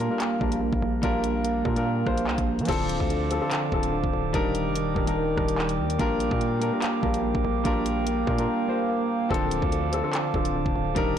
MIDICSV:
0, 0, Header, 1, 6, 480
1, 0, Start_track
1, 0, Tempo, 413793
1, 1195, Time_signature, 4, 2, 24, 8
1, 12976, End_track
2, 0, Start_track
2, 0, Title_t, "Glass harmonica"
2, 0, Program_c, 0, 92
2, 3113, Note_on_c, 0, 77, 65
2, 3113, Note_on_c, 0, 81, 66
2, 3113, Note_on_c, 0, 86, 79
2, 3114, Note_on_c, 0, 72, 68
2, 5015, Note_off_c, 0, 72, 0
2, 5015, Note_off_c, 0, 77, 0
2, 5015, Note_off_c, 0, 81, 0
2, 5034, Note_on_c, 0, 70, 69
2, 5034, Note_on_c, 0, 74, 65
2, 5034, Note_on_c, 0, 79, 62
2, 6935, Note_off_c, 0, 74, 0
2, 6957, Note_on_c, 0, 77, 66
2, 10748, Note_off_c, 0, 70, 0
2, 10748, Note_off_c, 0, 79, 0
2, 10796, Note_on_c, 0, 72, 69
2, 10796, Note_on_c, 0, 81, 65
2, 12669, Note_off_c, 0, 77, 0
2, 12696, Note_off_c, 0, 72, 0
2, 12696, Note_off_c, 0, 81, 0
2, 12715, Note_on_c, 0, 70, 71
2, 12715, Note_on_c, 0, 79, 66
2, 12716, Note_on_c, 0, 74, 68
2, 12976, Note_off_c, 0, 70, 0
2, 12976, Note_off_c, 0, 74, 0
2, 12976, Note_off_c, 0, 79, 0
2, 12976, Note_off_c, 0, 86, 0
2, 12976, End_track
3, 0, Start_track
3, 0, Title_t, "Grand piano"
3, 0, Program_c, 1, 0
3, 0, Control_c, 1, 64, 127
3, 0, Note_on_c, 1, 55, 80
3, 0, Note_on_c, 1, 62, 81
3, 0, Note_on_c, 1, 65, 79
3, 0, Note_on_c, 1, 70, 101
3, 106, Note_off_c, 1, 55, 0
3, 106, Note_on_c, 1, 55, 86
3, 115, Note_off_c, 1, 62, 0
3, 115, Note_on_c, 1, 62, 83
3, 123, Note_off_c, 1, 65, 0
3, 123, Note_on_c, 1, 65, 84
3, 131, Note_off_c, 1, 70, 0
3, 131, Note_on_c, 1, 70, 98
3, 381, Note_off_c, 1, 55, 0
3, 386, Note_off_c, 1, 62, 0
3, 390, Note_off_c, 1, 65, 0
3, 394, Note_off_c, 1, 70, 0
3, 456, Note_on_c, 1, 55, 88
3, 464, Note_on_c, 1, 62, 79
3, 473, Note_on_c, 1, 65, 72
3, 481, Note_on_c, 1, 70, 89
3, 1007, Note_off_c, 1, 55, 0
3, 1011, Note_off_c, 1, 62, 0
3, 1015, Note_off_c, 1, 65, 0
3, 1020, Note_off_c, 1, 70, 0
3, 1180, Note_on_c, 1, 55, 116
3, 1189, Note_on_c, 1, 62, 100
3, 1197, Note_on_c, 1, 65, 102
3, 1205, Note_on_c, 1, 70, 121
3, 1729, Note_off_c, 1, 55, 0
3, 1733, Note_off_c, 1, 62, 0
3, 1738, Note_off_c, 1, 65, 0
3, 1742, Note_off_c, 1, 70, 0
3, 1907, Note_on_c, 1, 55, 86
3, 1916, Note_on_c, 1, 62, 74
3, 1924, Note_on_c, 1, 65, 79
3, 1932, Note_on_c, 1, 70, 96
3, 2006, Note_off_c, 1, 55, 0
3, 2010, Note_off_c, 1, 62, 0
3, 2014, Note_off_c, 1, 65, 0
3, 2019, Note_off_c, 1, 70, 0
3, 2033, Note_on_c, 1, 55, 90
3, 2042, Note_on_c, 1, 62, 83
3, 2051, Note_on_c, 1, 65, 82
3, 2059, Note_on_c, 1, 70, 107
3, 2305, Note_off_c, 1, 55, 0
3, 2310, Note_off_c, 1, 62, 0
3, 2314, Note_off_c, 1, 65, 0
3, 2318, Note_off_c, 1, 70, 0
3, 2376, Note_on_c, 1, 55, 87
3, 2385, Note_on_c, 1, 62, 81
3, 2393, Note_on_c, 1, 65, 84
3, 2402, Note_on_c, 1, 72, 98
3, 2927, Note_off_c, 1, 55, 0
3, 2932, Note_off_c, 1, 62, 0
3, 2936, Note_off_c, 1, 65, 0
3, 2940, Note_off_c, 1, 72, 0
3, 3097, Note_on_c, 1, 53, 116
3, 3106, Note_on_c, 1, 60, 109
3, 3114, Note_on_c, 1, 62, 102
3, 3122, Note_on_c, 1, 69, 116
3, 3127, Control_c, 1, 64, 0
3, 3324, Control_c, 1, 64, 127
3, 3648, Note_off_c, 1, 53, 0
3, 3652, Note_off_c, 1, 60, 0
3, 3656, Note_off_c, 1, 62, 0
3, 3660, Note_off_c, 1, 69, 0
3, 3824, Note_on_c, 1, 53, 85
3, 3832, Note_on_c, 1, 60, 84
3, 3840, Note_on_c, 1, 62, 82
3, 3849, Note_on_c, 1, 69, 96
3, 3921, Note_off_c, 1, 53, 0
3, 3929, Note_off_c, 1, 60, 0
3, 3933, Note_off_c, 1, 62, 0
3, 3937, Note_off_c, 1, 69, 0
3, 3938, Note_on_c, 1, 53, 85
3, 3947, Note_on_c, 1, 60, 83
3, 3955, Note_on_c, 1, 62, 82
3, 3964, Note_on_c, 1, 69, 101
3, 4218, Note_off_c, 1, 53, 0
3, 4222, Note_off_c, 1, 60, 0
3, 4226, Note_off_c, 1, 62, 0
3, 4230, Note_off_c, 1, 69, 0
3, 4309, Note_on_c, 1, 53, 87
3, 4317, Note_on_c, 1, 60, 80
3, 4325, Note_on_c, 1, 62, 77
3, 4334, Note_on_c, 1, 69, 90
3, 4854, Note_off_c, 1, 53, 0
3, 4858, Note_off_c, 1, 60, 0
3, 4862, Note_off_c, 1, 62, 0
3, 4866, Note_off_c, 1, 69, 0
3, 5020, Note_on_c, 1, 55, 114
3, 5029, Note_on_c, 1, 62, 106
3, 5037, Note_on_c, 1, 63, 106
3, 5045, Note_on_c, 1, 70, 127
3, 5047, Control_c, 1, 64, 0
3, 5231, Control_c, 1, 64, 127
3, 5569, Note_off_c, 1, 55, 0
3, 5574, Note_off_c, 1, 62, 0
3, 5578, Note_off_c, 1, 63, 0
3, 5582, Note_off_c, 1, 70, 0
3, 5733, Note_on_c, 1, 55, 93
3, 5742, Note_on_c, 1, 62, 82
3, 5750, Note_on_c, 1, 63, 85
3, 5759, Note_on_c, 1, 70, 94
3, 5839, Note_off_c, 1, 55, 0
3, 5844, Note_off_c, 1, 62, 0
3, 5848, Note_off_c, 1, 63, 0
3, 5852, Note_off_c, 1, 70, 0
3, 5871, Note_on_c, 1, 55, 90
3, 5879, Note_on_c, 1, 62, 84
3, 5888, Note_on_c, 1, 63, 85
3, 5897, Note_on_c, 1, 70, 102
3, 6144, Note_off_c, 1, 55, 0
3, 6148, Note_off_c, 1, 62, 0
3, 6153, Note_off_c, 1, 63, 0
3, 6157, Note_off_c, 1, 70, 0
3, 6222, Note_on_c, 1, 55, 89
3, 6231, Note_on_c, 1, 62, 78
3, 6239, Note_on_c, 1, 63, 75
3, 6247, Note_on_c, 1, 70, 95
3, 6770, Note_off_c, 1, 55, 0
3, 6775, Note_off_c, 1, 62, 0
3, 6779, Note_off_c, 1, 63, 0
3, 6783, Note_off_c, 1, 70, 0
3, 6943, Note_on_c, 1, 55, 111
3, 6951, Note_on_c, 1, 62, 109
3, 6960, Note_on_c, 1, 65, 102
3, 6968, Note_on_c, 1, 70, 127
3, 6972, Control_c, 1, 64, 0
3, 7171, Control_c, 1, 64, 127
3, 7490, Note_off_c, 1, 55, 0
3, 7495, Note_off_c, 1, 62, 0
3, 7499, Note_off_c, 1, 65, 0
3, 7503, Note_off_c, 1, 70, 0
3, 7653, Note_on_c, 1, 55, 88
3, 7661, Note_on_c, 1, 62, 81
3, 7670, Note_on_c, 1, 65, 81
3, 7679, Note_on_c, 1, 70, 104
3, 7759, Note_off_c, 1, 55, 0
3, 7763, Note_off_c, 1, 62, 0
3, 7768, Note_off_c, 1, 65, 0
3, 7772, Note_off_c, 1, 70, 0
3, 7787, Note_on_c, 1, 55, 88
3, 7795, Note_on_c, 1, 62, 84
3, 7803, Note_on_c, 1, 65, 84
3, 7812, Note_on_c, 1, 70, 97
3, 8062, Note_off_c, 1, 55, 0
3, 8066, Note_off_c, 1, 62, 0
3, 8070, Note_off_c, 1, 65, 0
3, 8074, Note_off_c, 1, 70, 0
3, 8137, Note_on_c, 1, 55, 91
3, 8145, Note_on_c, 1, 62, 80
3, 8153, Note_on_c, 1, 65, 73
3, 8162, Note_on_c, 1, 70, 91
3, 8688, Note_off_c, 1, 55, 0
3, 8692, Note_off_c, 1, 62, 0
3, 8696, Note_off_c, 1, 65, 0
3, 8700, Note_off_c, 1, 70, 0
3, 8859, Note_on_c, 1, 55, 115
3, 8867, Note_on_c, 1, 62, 100
3, 8875, Note_on_c, 1, 65, 104
3, 8884, Note_on_c, 1, 70, 119
3, 9409, Note_off_c, 1, 55, 0
3, 9413, Note_off_c, 1, 62, 0
3, 9417, Note_off_c, 1, 65, 0
3, 9421, Note_off_c, 1, 70, 0
3, 9586, Note_on_c, 1, 55, 85
3, 9594, Note_on_c, 1, 62, 77
3, 9603, Note_on_c, 1, 65, 78
3, 9612, Note_on_c, 1, 70, 97
3, 9686, Note_off_c, 1, 55, 0
3, 9690, Note_off_c, 1, 62, 0
3, 9694, Note_off_c, 1, 65, 0
3, 9698, Note_off_c, 1, 70, 0
3, 9713, Note_on_c, 1, 55, 92
3, 9721, Note_on_c, 1, 62, 84
3, 9730, Note_on_c, 1, 65, 81
3, 9739, Note_on_c, 1, 70, 108
3, 9985, Note_off_c, 1, 55, 0
3, 9989, Note_off_c, 1, 62, 0
3, 9993, Note_off_c, 1, 65, 0
3, 9998, Note_off_c, 1, 70, 0
3, 10055, Note_on_c, 1, 55, 89
3, 10064, Note_on_c, 1, 62, 81
3, 10072, Note_on_c, 1, 65, 85
3, 10081, Note_on_c, 1, 72, 94
3, 10607, Note_off_c, 1, 55, 0
3, 10611, Note_off_c, 1, 62, 0
3, 10615, Note_off_c, 1, 65, 0
3, 10620, Note_off_c, 1, 72, 0
3, 10776, Note_on_c, 1, 53, 115
3, 10784, Note_on_c, 1, 60, 106
3, 10793, Note_on_c, 1, 62, 108
3, 10801, Note_on_c, 1, 69, 115
3, 10811, Control_c, 1, 64, 0
3, 10981, Control_c, 1, 64, 127
3, 11327, Note_off_c, 1, 53, 0
3, 11331, Note_off_c, 1, 60, 0
3, 11336, Note_off_c, 1, 62, 0
3, 11340, Note_off_c, 1, 69, 0
3, 11504, Note_on_c, 1, 53, 91
3, 11512, Note_on_c, 1, 60, 81
3, 11521, Note_on_c, 1, 62, 79
3, 11529, Note_on_c, 1, 69, 104
3, 11601, Note_off_c, 1, 53, 0
3, 11609, Note_off_c, 1, 60, 0
3, 11613, Note_off_c, 1, 62, 0
3, 11617, Note_off_c, 1, 69, 0
3, 11618, Note_on_c, 1, 53, 84
3, 11627, Note_on_c, 1, 60, 82
3, 11636, Note_on_c, 1, 62, 85
3, 11644, Note_on_c, 1, 69, 101
3, 11898, Note_off_c, 1, 53, 0
3, 11902, Note_off_c, 1, 60, 0
3, 11906, Note_off_c, 1, 62, 0
3, 11910, Note_off_c, 1, 69, 0
3, 11989, Note_on_c, 1, 53, 84
3, 11998, Note_on_c, 1, 60, 79
3, 12006, Note_on_c, 1, 62, 76
3, 12015, Note_on_c, 1, 69, 87
3, 12534, Note_off_c, 1, 53, 0
3, 12538, Note_off_c, 1, 60, 0
3, 12542, Note_off_c, 1, 62, 0
3, 12546, Note_off_c, 1, 69, 0
3, 12700, Note_on_c, 1, 55, 119
3, 12709, Note_on_c, 1, 62, 103
3, 12717, Note_on_c, 1, 63, 101
3, 12726, Note_on_c, 1, 70, 127
3, 12729, Control_c, 1, 64, 0
3, 12951, Control_c, 1, 64, 127
3, 12976, Note_off_c, 1, 55, 0
3, 12976, Note_off_c, 1, 62, 0
3, 12976, Note_off_c, 1, 63, 0
3, 12976, Note_off_c, 1, 70, 0
3, 12976, End_track
4, 0, Start_track
4, 0, Title_t, "Tine electric piano"
4, 0, Program_c, 2, 4
4, 0, Note_on_c, 2, 58, 84
4, 220, Note_off_c, 2, 58, 0
4, 234, Note_on_c, 2, 58, 89
4, 697, Note_off_c, 2, 58, 0
4, 711, Note_on_c, 2, 58, 83
4, 1183, Note_off_c, 2, 58, 0
4, 1197, Note_on_c, 2, 58, 101
4, 1661, Note_off_c, 2, 58, 0
4, 1675, Note_on_c, 2, 58, 92
4, 2144, Note_off_c, 2, 58, 0
4, 2158, Note_on_c, 2, 58, 93
4, 2619, Note_off_c, 2, 58, 0
4, 2633, Note_on_c, 2, 58, 83
4, 3114, Note_off_c, 2, 58, 0
4, 3116, Note_on_c, 2, 50, 102
4, 3584, Note_off_c, 2, 50, 0
4, 3598, Note_on_c, 2, 50, 92
4, 4064, Note_off_c, 2, 50, 0
4, 4078, Note_on_c, 2, 50, 97
4, 4543, Note_off_c, 2, 50, 0
4, 4556, Note_on_c, 2, 50, 87
4, 5036, Note_off_c, 2, 50, 0
4, 5036, Note_on_c, 2, 51, 96
4, 5503, Note_off_c, 2, 51, 0
4, 5516, Note_on_c, 2, 51, 88
4, 5983, Note_off_c, 2, 51, 0
4, 5997, Note_on_c, 2, 51, 92
4, 6458, Note_off_c, 2, 51, 0
4, 6472, Note_on_c, 2, 51, 76
4, 6953, Note_off_c, 2, 51, 0
4, 6954, Note_on_c, 2, 58, 92
4, 7422, Note_off_c, 2, 58, 0
4, 7436, Note_on_c, 2, 58, 86
4, 7902, Note_off_c, 2, 58, 0
4, 7915, Note_on_c, 2, 58, 90
4, 8378, Note_off_c, 2, 58, 0
4, 8392, Note_on_c, 2, 58, 83
4, 8863, Note_off_c, 2, 58, 0
4, 8877, Note_on_c, 2, 58, 99
4, 9342, Note_off_c, 2, 58, 0
4, 9356, Note_on_c, 2, 58, 94
4, 9825, Note_off_c, 2, 58, 0
4, 9839, Note_on_c, 2, 58, 93
4, 10299, Note_off_c, 2, 58, 0
4, 10313, Note_on_c, 2, 58, 82
4, 10794, Note_off_c, 2, 58, 0
4, 10796, Note_on_c, 2, 50, 96
4, 11265, Note_off_c, 2, 50, 0
4, 11279, Note_on_c, 2, 50, 94
4, 11745, Note_off_c, 2, 50, 0
4, 11759, Note_on_c, 2, 50, 96
4, 12223, Note_off_c, 2, 50, 0
4, 12237, Note_on_c, 2, 50, 85
4, 12716, Note_off_c, 2, 50, 0
4, 12716, Note_on_c, 2, 51, 96
4, 12976, Note_off_c, 2, 51, 0
4, 12976, End_track
5, 0, Start_track
5, 0, Title_t, "808-style bass"
5, 0, Program_c, 3, 38
5, 475, Note_on_c, 3, 34, 106
5, 827, Note_off_c, 3, 34, 0
5, 842, Note_on_c, 3, 34, 101
5, 948, Note_off_c, 3, 34, 0
5, 955, Note_on_c, 3, 34, 107
5, 1185, Note_off_c, 3, 34, 0
5, 1195, Note_on_c, 3, 34, 116
5, 1886, Note_off_c, 3, 34, 0
5, 1916, Note_on_c, 3, 46, 104
5, 2376, Note_off_c, 3, 46, 0
5, 2395, Note_on_c, 3, 34, 112
5, 2635, Note_on_c, 3, 36, 103
5, 2653, Note_off_c, 3, 34, 0
5, 2756, Note_off_c, 3, 36, 0
5, 2763, Note_on_c, 3, 34, 105
5, 3003, Note_on_c, 3, 53, 99
5, 3020, Note_off_c, 3, 34, 0
5, 3110, Note_off_c, 3, 53, 0
5, 3115, Note_on_c, 3, 26, 116
5, 3467, Note_off_c, 3, 26, 0
5, 3483, Note_on_c, 3, 38, 102
5, 3943, Note_off_c, 3, 38, 0
5, 4316, Note_on_c, 3, 26, 111
5, 4668, Note_off_c, 3, 26, 0
5, 4682, Note_on_c, 3, 26, 97
5, 4787, Note_off_c, 3, 26, 0
5, 4794, Note_on_c, 3, 26, 106
5, 5025, Note_off_c, 3, 26, 0
5, 5034, Note_on_c, 3, 27, 112
5, 5402, Note_on_c, 3, 29, 98
5, 5419, Note_off_c, 3, 27, 0
5, 5578, Note_on_c, 3, 27, 100
5, 5595, Note_off_c, 3, 29, 0
5, 5746, Note_off_c, 3, 27, 0
5, 5756, Note_on_c, 3, 27, 106
5, 6216, Note_off_c, 3, 27, 0
5, 6235, Note_on_c, 3, 27, 113
5, 6715, Note_on_c, 3, 39, 101
5, 6732, Note_off_c, 3, 27, 0
5, 6943, Note_off_c, 3, 39, 0
5, 6954, Note_on_c, 3, 34, 115
5, 7307, Note_off_c, 3, 34, 0
5, 7322, Note_on_c, 3, 46, 102
5, 7783, Note_off_c, 3, 46, 0
5, 8155, Note_on_c, 3, 34, 110
5, 8507, Note_off_c, 3, 34, 0
5, 8522, Note_on_c, 3, 34, 96
5, 8630, Note_off_c, 3, 34, 0
5, 8636, Note_on_c, 3, 34, 107
5, 8866, Note_off_c, 3, 34, 0
5, 8875, Note_on_c, 3, 34, 116
5, 9566, Note_off_c, 3, 34, 0
5, 9596, Note_on_c, 3, 46, 104
5, 9826, Note_off_c, 3, 46, 0
5, 10795, Note_on_c, 3, 26, 118
5, 11147, Note_off_c, 3, 26, 0
5, 11162, Note_on_c, 3, 38, 102
5, 11623, Note_off_c, 3, 38, 0
5, 11995, Note_on_c, 3, 26, 110
5, 12347, Note_off_c, 3, 26, 0
5, 12362, Note_on_c, 3, 26, 101
5, 12467, Note_off_c, 3, 26, 0
5, 12474, Note_on_c, 3, 26, 108
5, 12705, Note_off_c, 3, 26, 0
5, 12715, Note_on_c, 3, 27, 109
5, 12976, Note_off_c, 3, 27, 0
5, 12976, End_track
6, 0, Start_track
6, 0, Title_t, "Drums"
6, 233, Note_on_c, 9, 39, 122
6, 233, Note_on_c, 9, 42, 82
6, 349, Note_off_c, 9, 39, 0
6, 349, Note_off_c, 9, 42, 0
6, 475, Note_on_c, 9, 36, 91
6, 591, Note_off_c, 9, 36, 0
6, 601, Note_on_c, 9, 42, 80
6, 717, Note_off_c, 9, 42, 0
6, 842, Note_on_c, 9, 36, 94
6, 958, Note_off_c, 9, 36, 0
6, 1194, Note_on_c, 9, 42, 76
6, 1195, Note_on_c, 9, 36, 115
6, 1310, Note_off_c, 9, 42, 0
6, 1311, Note_off_c, 9, 36, 0
6, 1435, Note_on_c, 9, 42, 85
6, 1551, Note_off_c, 9, 42, 0
6, 1677, Note_on_c, 9, 42, 83
6, 1793, Note_off_c, 9, 42, 0
6, 1916, Note_on_c, 9, 36, 89
6, 2032, Note_off_c, 9, 36, 0
6, 2046, Note_on_c, 9, 42, 72
6, 2162, Note_off_c, 9, 42, 0
6, 2395, Note_on_c, 9, 36, 89
6, 2396, Note_on_c, 9, 37, 93
6, 2511, Note_off_c, 9, 36, 0
6, 2512, Note_off_c, 9, 37, 0
6, 2523, Note_on_c, 9, 42, 81
6, 2636, Note_on_c, 9, 39, 109
6, 2639, Note_off_c, 9, 42, 0
6, 2752, Note_off_c, 9, 39, 0
6, 2762, Note_on_c, 9, 36, 93
6, 2762, Note_on_c, 9, 42, 67
6, 2878, Note_off_c, 9, 36, 0
6, 2878, Note_off_c, 9, 42, 0
6, 3003, Note_on_c, 9, 42, 46
6, 3078, Note_off_c, 9, 42, 0
6, 3078, Note_on_c, 9, 42, 61
6, 3115, Note_off_c, 9, 42, 0
6, 3115, Note_on_c, 9, 36, 121
6, 3115, Note_on_c, 9, 42, 77
6, 3115, Note_on_c, 9, 49, 102
6, 3159, Note_off_c, 9, 42, 0
6, 3159, Note_on_c, 9, 42, 75
6, 3231, Note_off_c, 9, 36, 0
6, 3231, Note_off_c, 9, 49, 0
6, 3275, Note_off_c, 9, 42, 0
6, 3357, Note_on_c, 9, 42, 86
6, 3473, Note_off_c, 9, 42, 0
6, 3482, Note_on_c, 9, 36, 88
6, 3598, Note_off_c, 9, 36, 0
6, 3598, Note_on_c, 9, 42, 83
6, 3714, Note_off_c, 9, 42, 0
6, 3835, Note_on_c, 9, 42, 78
6, 3951, Note_off_c, 9, 42, 0
6, 4076, Note_on_c, 9, 39, 127
6, 4076, Note_on_c, 9, 42, 82
6, 4192, Note_off_c, 9, 39, 0
6, 4192, Note_off_c, 9, 42, 0
6, 4316, Note_on_c, 9, 36, 94
6, 4432, Note_off_c, 9, 36, 0
6, 4443, Note_on_c, 9, 42, 79
6, 4559, Note_off_c, 9, 42, 0
6, 4682, Note_on_c, 9, 36, 96
6, 4798, Note_off_c, 9, 36, 0
6, 5034, Note_on_c, 9, 42, 78
6, 5035, Note_on_c, 9, 36, 120
6, 5150, Note_off_c, 9, 42, 0
6, 5151, Note_off_c, 9, 36, 0
6, 5275, Note_on_c, 9, 42, 89
6, 5391, Note_off_c, 9, 42, 0
6, 5516, Note_on_c, 9, 42, 89
6, 5632, Note_off_c, 9, 42, 0
6, 5755, Note_on_c, 9, 36, 93
6, 5871, Note_off_c, 9, 36, 0
6, 5886, Note_on_c, 9, 42, 75
6, 6002, Note_off_c, 9, 42, 0
6, 6235, Note_on_c, 9, 36, 96
6, 6235, Note_on_c, 9, 37, 96
6, 6351, Note_off_c, 9, 36, 0
6, 6351, Note_off_c, 9, 37, 0
6, 6362, Note_on_c, 9, 42, 79
6, 6475, Note_on_c, 9, 39, 113
6, 6478, Note_off_c, 9, 42, 0
6, 6591, Note_off_c, 9, 39, 0
6, 6600, Note_on_c, 9, 42, 71
6, 6716, Note_off_c, 9, 42, 0
6, 6843, Note_on_c, 9, 42, 74
6, 6954, Note_off_c, 9, 42, 0
6, 6954, Note_on_c, 9, 42, 79
6, 6955, Note_on_c, 9, 36, 116
6, 7070, Note_off_c, 9, 42, 0
6, 7071, Note_off_c, 9, 36, 0
6, 7195, Note_on_c, 9, 42, 86
6, 7311, Note_off_c, 9, 42, 0
6, 7322, Note_on_c, 9, 36, 94
6, 7436, Note_on_c, 9, 42, 79
6, 7438, Note_off_c, 9, 36, 0
6, 7552, Note_off_c, 9, 42, 0
6, 7674, Note_on_c, 9, 42, 77
6, 7790, Note_off_c, 9, 42, 0
6, 7914, Note_on_c, 9, 39, 125
6, 7914, Note_on_c, 9, 42, 85
6, 8030, Note_off_c, 9, 39, 0
6, 8030, Note_off_c, 9, 42, 0
6, 8155, Note_on_c, 9, 36, 95
6, 8271, Note_off_c, 9, 36, 0
6, 8282, Note_on_c, 9, 42, 80
6, 8398, Note_off_c, 9, 42, 0
6, 8522, Note_on_c, 9, 36, 93
6, 8638, Note_off_c, 9, 36, 0
6, 8874, Note_on_c, 9, 42, 79
6, 8875, Note_on_c, 9, 36, 120
6, 8990, Note_off_c, 9, 42, 0
6, 8991, Note_off_c, 9, 36, 0
6, 9115, Note_on_c, 9, 42, 88
6, 9231, Note_off_c, 9, 42, 0
6, 9357, Note_on_c, 9, 42, 87
6, 9473, Note_off_c, 9, 42, 0
6, 9596, Note_on_c, 9, 36, 96
6, 9712, Note_off_c, 9, 36, 0
6, 9726, Note_on_c, 9, 42, 74
6, 9842, Note_off_c, 9, 42, 0
6, 10795, Note_on_c, 9, 36, 123
6, 10838, Note_on_c, 9, 42, 77
6, 10911, Note_off_c, 9, 36, 0
6, 10954, Note_off_c, 9, 42, 0
6, 11036, Note_on_c, 9, 42, 88
6, 11152, Note_off_c, 9, 42, 0
6, 11162, Note_on_c, 9, 36, 93
6, 11277, Note_on_c, 9, 42, 80
6, 11278, Note_off_c, 9, 36, 0
6, 11393, Note_off_c, 9, 42, 0
6, 11516, Note_on_c, 9, 42, 79
6, 11632, Note_off_c, 9, 42, 0
6, 11755, Note_on_c, 9, 39, 126
6, 11755, Note_on_c, 9, 42, 83
6, 11871, Note_off_c, 9, 39, 0
6, 11871, Note_off_c, 9, 42, 0
6, 11995, Note_on_c, 9, 36, 96
6, 12111, Note_off_c, 9, 36, 0
6, 12123, Note_on_c, 9, 42, 82
6, 12239, Note_off_c, 9, 42, 0
6, 12362, Note_on_c, 9, 36, 97
6, 12478, Note_off_c, 9, 36, 0
6, 12715, Note_on_c, 9, 36, 115
6, 12715, Note_on_c, 9, 42, 81
6, 12831, Note_off_c, 9, 36, 0
6, 12831, Note_off_c, 9, 42, 0
6, 12976, End_track
0, 0, End_of_file